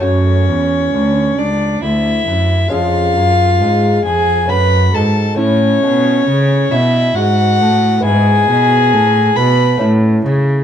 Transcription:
X:1
M:3/4
L:1/8
Q:1/4=68
K:F#m
V:1 name="Violin"
c3 d e2 | ^e3 g b a | c3 e f2 | g3 b z2 |]
V:2 name="Violin"
C3 D E2 | ^E3 G B A | C3 E F2 | G3 B z2 |]
V:3 name="Lute"
[A,CF]6 | [G,CG]4 [A,CF]2 | [A,CE]6 | [B,E]4 [A,CE]2 |]
V:4 name="Lute" clef=bass
F,, E,, D,, z D,, F,, | ^E,, F,, G,, E,, F,, G,, | A,, B,, C, B,, G,, A,, | G,, B,, A,, B,, A,, C, |]
V:5 name="Cello" clef=bass
F,, E,, D,, C,, D,, F,, | ^E,, F,, G,, E,, F,, G,, | A,, B,, C, B,, G,, A,, | G,, B,, A,, B,, A,, C, |]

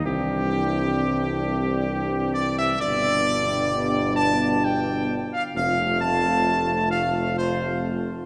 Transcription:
X:1
M:3/4
L:1/16
Q:1/4=66
K:Gmix
V:1 name="Trumpet section"
G8- G2 d e | d6 a2 g3 f | f2 a4 f2 c2 z2 |]
V:2 name="French horn section"
[CD]12 | [B,D]12 | [A,F]12 |]
V:3 name="Trombone section" clef=bass
[E,G,]12 | [B,,G,]12 | [C,A,]12 |]
V:4 name="Tuba" clef=bass
C,,12 | G,,,12 | F,,,12 |]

